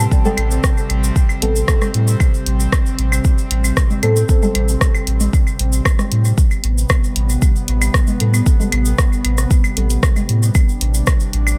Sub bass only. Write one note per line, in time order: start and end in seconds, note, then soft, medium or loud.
0.38 0.59 A1 medium
0.90 1.11 A1 medium
1.42 1.63 A1 medium
1.94 2.15 A2 medium
2.46 2.67 A1 loud
2.98 3.19 A1 medium
3.51 3.72 A1 medium
4.03 4.24 A2 medium
4.55 4.76 A1 loud
5.07 5.28 A1 medium
5.59 5.80 A1 medium
6.12 6.33 A2 medium
6.64 6.85 A1 loud
7.16 7.37 A1 medium
7.68 7.89 A1 medium
8.20 8.41 A2 medium
8.72 8.93 A1 loud
9.25 9.46 A1 medium
9.77 9.98 A1 medium
10.29 10.50 A2 medium
10.81 11.02 A1 loud
11.33 11.54 A1 medium